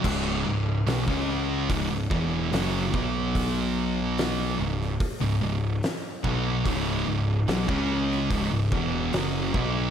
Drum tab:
CC |x---------------|----------------|----------------|
HH |----o---o---o---|o---o---o---o---|o---o---o---o---|
SD |----o-------o---|----o--o----o---|----o--o----o---|
BD |o----o--o-o---o-|o-------o-----o-|o----o--o-o---o-|